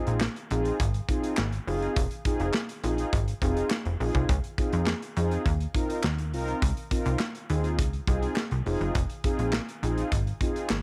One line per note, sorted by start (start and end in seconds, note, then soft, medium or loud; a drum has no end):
0.00 0.21 C4 medium
0.00 0.21 D#4 medium
0.00 0.21 F4 medium
0.00 0.21 G#4 medium
0.07 0.28 A#1 medium
0.07 closed hi-hat medium
0.21 snare loud
0.21 clap medium
0.36 closed hi-hat medium
0.50 0.72 A#1 loud
0.50 0.79 C4 medium
0.50 0.79 D#4 medium
0.50 0.79 F4 medium
0.50 0.79 G#4 loud
0.50 closed hi-hat medium
0.65 closed hi-hat medium
0.80 1.01 G#1 medium
0.80 kick loud
0.80 closed hi-hat medium
0.94 closed hi-hat soft
1.09 1.37 C4 medium
1.09 1.37 D#4 medium
1.09 1.37 F4 medium
1.09 1.37 G#4 medium
1.09 kick medium
1.09 closed hi-hat medium
1.24 closed hi-hat medium
1.37 1.59 G#1 loud
1.37 snare loud
1.37 clap loud
1.52 closed hi-hat medium
1.67 1.88 F#1 medium
1.67 1.95 C4 medium
1.67 1.95 D#4 medium
1.67 1.96 F4 loud
1.67 1.96 G#4 loud
1.67 open hi-hat medium
1.82 closed hi-hat soft
1.96 2.07 F1 loud
1.96 kick loud
1.96 closed hi-hat loud
2.11 closed hi-hat soft
2.25 2.54 C4 medium
2.25 2.54 D#4 medium
2.25 2.54 F4 medium
2.25 2.54 G#4 loud
2.25 kick loud
2.25 closed hi-hat medium
2.40 2.51 F1 medium
2.40 closed hi-hat medium
2.54 snare loud
2.54 clap medium
2.69 closed hi-hat medium
2.84 3.05 A#1 medium
2.84 3.12 C4 medium
2.84 3.12 D#4 medium
2.84 3.12 F4 medium
2.84 3.12 G#4 loud
2.84 closed hi-hat medium
2.98 closed hi-hat medium
3.13 3.34 G#1 loud
3.13 kick loud
3.13 closed hi-hat medium
3.28 closed hi-hat soft
3.42 3.63 F1 loud
3.42 3.70 C4 medium
3.42 3.70 D#4 medium
3.42 3.70 F4 medium
3.42 3.71 G#4 loud
3.42 kick medium
3.42 closed hi-hat medium
3.57 closed hi-hat medium
3.70 snare loud
3.70 clap loud
3.85 3.96 F1 medium
3.85 closed hi-hat soft
4.00 4.11 A#1 medium
4.00 4.28 C4 medium
4.00 4.28 D#4 medium
4.00 4.29 F4 medium
4.00 4.29 G#4 loud
4.00 open hi-hat medium
4.15 4.25 C2 medium
4.15 kick medium
4.15 closed hi-hat soft
4.29 4.40 C#2 loud
4.29 kick loud
4.29 closed hi-hat medium
4.44 closed hi-hat soft
4.58 4.86 C4 medium
4.58 4.87 D#4 medium
4.58 4.87 F4 medium
4.58 4.87 G#4 medium
4.58 kick medium
4.58 closed hi-hat medium
4.73 4.94 F2 medium
4.73 closed hi-hat medium
4.86 snare loud
4.86 clap medium
5.02 closed hi-hat medium
5.17 5.38 F2 medium
5.17 5.45 C4 medium
5.17 5.45 D#4 medium
5.17 5.45 F4 medium
5.17 5.45 G#4 loud
5.17 closed hi-hat medium
5.31 closed hi-hat medium
5.46 5.67 D#2 loud
5.46 kick loud
5.46 closed hi-hat medium
5.60 closed hi-hat soft
5.75 6.03 C4 medium
5.75 6.03 D#4 medium
5.75 6.03 F4 medium
5.75 6.03 A#4 medium
5.75 kick medium
5.75 closed hi-hat medium
5.90 closed hi-hat medium
6.04 6.35 D#2 medium
6.04 snare loud
6.04 clap loud
6.18 closed hi-hat medium
6.33 6.54 C2 medium
6.33 6.61 C4 loud
6.33 6.61 D#4 medium
6.33 6.61 F4 medium
6.33 6.62 A#4 loud
6.33 open hi-hat medium
6.48 closed hi-hat soft
6.62 6.73 C#2 loud
6.62 kick loud
6.62 closed hi-hat loud
6.77 closed hi-hat soft
6.91 7.19 C4 medium
6.91 7.19 D#4 medium
6.91 7.20 F4 medium
6.91 7.20 A#4 loud
6.91 kick medium
6.91 closed hi-hat medium
7.06 7.16 C2 medium
7.06 closed hi-hat medium
7.19 snare loud
7.19 clap medium
7.35 closed hi-hat medium
7.49 7.80 D#2 loud
7.49 7.78 C4 loud
7.49 7.78 D#4 medium
7.49 7.78 F4 medium
7.49 7.78 G#4 medium
7.49 closed hi-hat medium
7.64 closed hi-hat medium
7.79 8.00 C#2 loud
7.79 kick loud
7.79 closed hi-hat medium
7.93 closed hi-hat soft
8.07 8.29 C2 loud
8.07 8.36 C4 loud
8.07 8.36 D#4 medium
8.07 8.36 F4 medium
8.07 8.36 G#4 loud
8.07 kick loud
8.07 closed hi-hat medium
8.23 closed hi-hat medium
8.36 snare loud
8.36 clap loud
8.51 8.62 C2 medium
8.51 closed hi-hat soft
8.65 8.77 F1 medium
8.65 8.94 C4 loud
8.65 8.94 D#4 medium
8.65 8.94 F4 medium
8.65 8.94 G#4 loud
8.65 open hi-hat medium
8.81 8.91 F#1 loud
8.81 closed hi-hat soft
8.95 9.06 F1 loud
8.95 kick loud
8.95 closed hi-hat loud
9.10 closed hi-hat soft
9.24 9.52 C4 medium
9.24 9.52 D#4 medium
9.24 9.53 F4 medium
9.24 9.53 G#4 loud
9.24 kick loud
9.24 closed hi-hat medium
9.39 9.60 A#1 medium
9.39 closed hi-hat medium
9.53 snare loud
9.53 clap medium
9.69 closed hi-hat medium
9.83 10.04 A#1 medium
9.83 10.11 C4 loud
9.83 10.11 D#4 medium
9.83 10.11 F4 medium
9.83 10.11 G#4 loud
9.83 closed hi-hat medium
9.98 closed hi-hat medium
10.12 10.33 G#1 medium
10.12 kick loud
10.12 closed hi-hat medium
10.27 closed hi-hat soft
10.41 10.69 C4 medium
10.41 10.69 D#4 medium
10.41 10.70 F4 medium
10.41 10.70 G#4 medium
10.41 kick medium
10.41 closed hi-hat medium
10.56 closed hi-hat medium
10.70 10.82 G#1 medium
10.70 snare loud
10.70 clap loud